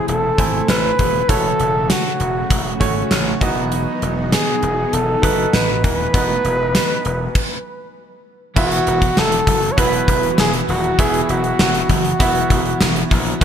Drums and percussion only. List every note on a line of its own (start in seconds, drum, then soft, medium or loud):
0.08 closed hi-hat medium
0.38 kick medium
0.38 closed hi-hat medium
0.68 snare loud
0.68 closed hi-hat medium
0.99 kick medium
0.99 closed hi-hat medium
1.29 kick loud
1.29 closed hi-hat medium
1.60 closed hi-hat medium
1.90 snare loud
1.90 closed hi-hat medium
2.20 closed hi-hat medium
2.50 kick medium
2.50 closed hi-hat medium
2.81 kick medium
2.81 closed hi-hat medium
3.11 snare loud
3.11 closed hi-hat medium
3.41 kick loud
3.41 closed hi-hat medium
3.72 closed hi-hat medium
4.02 closed hi-hat medium
4.32 snare loud
4.32 closed hi-hat medium
4.63 closed hi-hat medium
4.93 closed hi-hat medium
5.23 kick medium
5.23 closed hi-hat medium
5.53 snare loud
5.53 closed hi-hat medium
5.84 kick medium
5.84 closed hi-hat medium
6.14 kick loud
6.14 closed hi-hat medium
6.45 closed hi-hat medium
6.75 snare loud
6.75 closed hi-hat medium
6.75 tambourine medium
7.05 closed hi-hat medium
7.35 kick loud
7.35 crash medium
8.56 kick loud
8.56 crash loud
8.72 closed hi-hat medium
8.87 closed hi-hat medium
9.02 kick medium
9.02 closed hi-hat medium
9.17 snare loud
9.17 tambourine medium
9.32 closed hi-hat medium
9.47 kick medium
9.47 closed hi-hat medium
9.62 closed hi-hat soft
9.78 kick loud
9.78 closed hi-hat medium
9.93 closed hi-hat medium
10.08 kick medium
10.08 closed hi-hat medium
10.23 closed hi-hat soft
10.38 snare loud
10.38 tambourine medium
10.53 closed hi-hat medium
10.69 open hi-hat medium
10.84 closed hi-hat soft
10.99 kick loud
10.99 closed hi-hat medium
11.14 closed hi-hat medium
11.29 closed hi-hat medium
11.44 closed hi-hat medium
11.59 snare loud
11.59 tambourine medium
11.74 closed hi-hat medium
11.89 kick medium
11.89 closed hi-hat medium
12.05 closed hi-hat medium
12.20 kick loud
12.20 closed hi-hat medium
12.35 closed hi-hat soft
12.50 kick medium
12.50 closed hi-hat medium
12.65 closed hi-hat soft
12.81 snare loud
12.81 tambourine medium
12.96 closed hi-hat medium
13.11 kick medium
13.11 open hi-hat medium
13.26 closed hi-hat soft